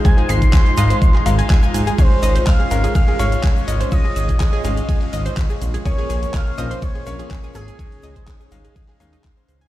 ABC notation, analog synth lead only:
X:1
M:4/4
L:1/8
Q:1/4=124
K:Dblyd
V:1 name="Analog synth lead"
a c'6 z | c2 f2 z4 | e e6 z | d2 f2 d2 z A- |
A6 z2 |]